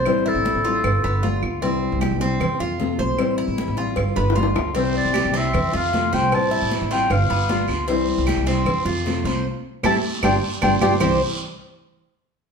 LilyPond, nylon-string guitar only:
\new Staff \with { instrumentName = "Nylon-string guitar" } { \time 4/4 \key c \major \tempo 4 = 153 <e g c' e'>4. <g c' e'>8 r8 <b f'>8 <g b f'>8 <b f'>8 | <c e g c' e'>4. <g c' e'>8 r8 <a c' f'>8 <c f a c' f'>8 <a c' f'>8 | <e g c' e'>4. <g c' e'>8 r8 <b f'>8 <g b f'>8 <b f'>8 | <c e g c' e'>4. <g c' e'>8 r8 <a c' f'>8 <c f a c' f'>8 <a c' f'>8 |
<e g c' e'>4. <g c' e'>8 r8 <b f'>8 <g b f'>8 <b f'>8 | <c e g c' e'>4. <g c' e'>8 r8 <a c' f'>8 <c f a c' f'>8 <a c' f'>8 | r4 <g a c'>8 r8 <g b d'>8 r8 <g b d'>8 <g b d'>8 | <c e g c' e'>8 r2. r8 | }